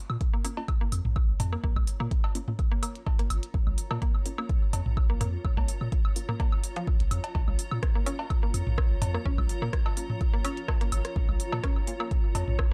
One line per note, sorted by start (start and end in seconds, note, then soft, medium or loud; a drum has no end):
0.00 12.73 F4 medium
0.00 12.73 C#5 medium
0.10 0.17 A#2 medium
0.10 12.73 A#5 medium
0.10 high woodblock medium
0.21 kick loud
0.21 closed hi-hat soft
0.34 0.36 A#3 medium
0.45 0.51 A#3 medium
0.45 0.52 A#3 medium
0.45 0.52 C#4 medium
0.45 0.52 F4 medium
0.45 open hi-hat medium
0.45 high woodblock soft
0.57 0.67 A#3 medium
0.57 0.67 C#4 medium
0.57 0.67 F4 medium
0.57 cowbell medium
0.68 kick loud
0.68 closed hi-hat soft
0.68 high woodblock medium
0.81 0.83 A#3 medium
0.92 1.01 F2 loud
0.92 open hi-hat medium
0.92 high woodblock soft
1.05 1.34 A#1 medium
1.05 mid tom medium
1.16 kick loud
1.16 high woodblock medium
1.40 1.56 F2 loud
1.40 mid tom medium
1.40 open hi-hat medium
1.40 cowbell medium
1.53 1.55 A#3 medium
1.53 high woodblock soft
1.64 1.72 A#1 medium
1.64 1.70 A#3 medium
1.64 kick loud
1.76 1.84 A#1 loud
1.76 kick medium
1.76 high conga medium
1.76 high woodblock medium
1.87 open hi-hat medium
2.00 2.08 A#2 medium
2.00 2.02 A#3 medium
2.00 high woodblock soft
2.11 kick loud
2.11 closed hi-hat soft
2.24 cowbell medium
2.24 high woodblock medium
2.35 2.42 A#3 medium
2.35 2.42 C#4 medium
2.35 2.42 F4 medium
2.35 open hi-hat medium
2.48 2.58 A#3 medium
2.48 2.58 C#4 medium
2.48 2.58 F4 medium
2.48 mid tom medium
2.59 kick loud
2.59 closed hi-hat soft
2.59 high woodblock soft
2.72 2.74 A#3 medium
2.83 2.89 A#3 medium
2.83 open hi-hat medium
2.83 high woodblock medium
2.95 closed hi-hat soft
3.06 kick loud
3.06 cowbell medium
3.06 high woodblock soft
3.19 3.22 A#3 medium
3.19 closed hi-hat soft
3.30 3.39 G#1 medium
3.30 open hi-hat medium
3.30 high woodblock medium
3.43 closed hi-hat soft
3.54 3.63 A#1 loud
3.54 kick loud
3.67 3.74 A#1 loud
3.67 high conga medium
3.67 high woodblock soft
3.78 open hi-hat medium
3.91 3.98 A#2 medium
3.91 3.93 A#3 medium
3.91 cowbell medium
3.91 high woodblock medium
4.02 4.08 A#3 medium
4.02 kick loud
4.02 closed hi-hat soft
4.15 high woodblock soft
4.26 4.33 A#3 medium
4.26 4.33 C#4 medium
4.26 4.33 F4 medium
4.26 open hi-hat medium
4.38 4.41 A#3 medium
4.38 4.48 A#3 medium
4.38 4.48 C#4 medium
4.38 4.48 F4 medium
4.38 high woodblock medium
4.49 kick loud
4.49 closed hi-hat soft
4.73 4.82 F2 loud
4.73 open hi-hat medium
4.73 cowbell medium
4.73 high woodblock soft
4.86 5.15 A#1 medium
4.86 mid tom medium
4.97 kick loud
4.97 high woodblock medium
5.10 5.12 A#3 medium
5.21 5.37 F2 loud
5.21 5.27 A#3 medium
5.21 mid tom medium
5.21 open hi-hat loud
5.21 high woodblock soft
5.45 5.53 A#1 loud
5.45 kick loud
5.45 high woodblock medium
5.57 5.65 A#1 loud
5.57 5.60 A#3 medium
5.57 kick medium
5.57 cowbell medium
5.57 high conga medium
5.68 open hi-hat medium
5.81 5.89 A#2 medium
5.81 high woodblock soft
5.92 kick loud
5.92 closed hi-hat soft
6.05 high woodblock medium
6.16 6.23 A#3 medium
6.16 6.23 C#4 medium
6.16 6.23 F4 medium
6.16 open hi-hat medium
6.29 6.31 A#3 medium
6.29 6.39 A#3 medium
6.29 6.39 C#4 medium
6.29 6.39 F4 medium
6.29 mid tom medium
6.29 high woodblock soft
6.40 6.47 A#3 medium
6.40 kick loud
6.40 closed hi-hat soft
6.40 cowbell medium
6.52 high woodblock medium
6.64 open hi-hat medium
6.76 6.80 F3 loud
6.76 closed hi-hat soft
6.87 kick loud
6.87 high woodblock soft
7.00 7.08 A#1 medium
7.00 closed hi-hat soft
7.11 7.20 F2 medium
7.11 open hi-hat medium
7.11 high woodblock medium
7.24 closed hi-hat soft
7.24 cowbell medium
7.35 7.44 A#1 loud
7.35 kick loud
7.35 cowbell medium
7.48 7.55 A#1 loud
7.48 high conga medium
7.48 high woodblock soft
7.59 open hi-hat medium
7.71 7.79 A#2 medium
7.71 high woodblock medium
7.83 kick loud
7.83 cross-stick medium
7.83 closed hi-hat soft
7.95 7.98 A#3 medium
8.06 8.14 A#3 medium
8.06 8.11 C#4 loud
8.06 8.14 C#4 medium
8.06 8.14 F4 medium
8.06 open hi-hat medium
8.06 high woodblock soft
8.19 8.29 A#3 medium
8.19 8.29 C#4 medium
8.19 8.29 F4 medium
8.19 cowbell medium
8.30 kick loud
8.30 closed hi-hat soft
8.30 high woodblock medium
8.43 8.45 A#3 medium
8.54 8.63 F2 loud
8.54 open hi-hat medium
8.54 high woodblock soft
8.67 8.96 A#1 medium
8.67 mid tom medium
8.78 kick loud
8.78 cross-stick medium
8.78 high woodblock medium
9.02 9.18 F2 loud
9.02 mid tom medium
9.02 open hi-hat medium
9.02 cowbell medium
9.14 9.17 A#3 medium
9.14 cross-stick medium
9.14 high woodblock soft
9.25 9.34 A#1 loud
9.25 9.30 C#4 loud
9.25 kick loud
9.38 9.46 A#1 loud
9.38 kick medium
9.38 high conga medium
9.38 high woodblock medium
9.49 open hi-hat medium
9.62 9.69 A#2 loud
9.62 9.64 A#3 medium
9.62 high woodblock soft
9.73 kick loud
9.73 cross-stick medium
9.73 closed hi-hat soft
9.86 cowbell medium
9.86 high woodblock medium
9.97 10.04 A#3 medium
9.97 10.04 C#4 medium
9.97 10.04 F4 medium
9.97 open hi-hat medium
10.10 mid tom medium
10.21 kick loud
10.21 closed hi-hat soft
10.21 high woodblock soft
10.34 10.36 A#3 medium
10.45 10.49 C#4 loud
10.45 open hi-hat medium
10.45 high woodblock medium
10.57 closed hi-hat soft
10.68 kick loud
10.68 cross-stick medium
10.68 cowbell medium
10.68 high woodblock soft
10.81 10.83 A#3 medium
10.81 closed hi-hat soft
10.92 11.01 G#1 medium
10.92 open hi-hat medium
10.92 high woodblock medium
11.05 cross-stick medium
11.05 closed hi-hat soft
11.16 11.25 A#1 loud
11.16 kick loud
11.29 11.36 A#1 loud
11.29 high conga medium
11.29 high woodblock soft
11.40 open hi-hat medium
11.52 11.60 A#2 medium
11.52 11.55 A#3 medium
11.52 cowbell medium
11.52 high woodblock medium
11.64 11.68 C#4 loud
11.64 kick loud
11.64 cross-stick medium
11.64 closed hi-hat soft
11.76 high woodblock soft
11.87 11.95 A#3 medium
11.87 11.95 C#4 medium
11.87 11.95 F4 medium
11.87 open hi-hat medium
12.00 12.10 A#3 medium
12.00 12.03 A#3 medium
12.00 12.10 C#4 medium
12.00 12.10 F4 medium
12.00 high woodblock medium
12.11 kick loud
12.11 closed hi-hat soft
12.35 12.44 F2 loud
12.35 open hi-hat medium
12.35 cowbell medium
12.35 high woodblock soft
12.48 12.73 A#1 medium
12.48 mid tom medium
12.59 kick loud
12.59 cross-stick medium
12.59 high woodblock medium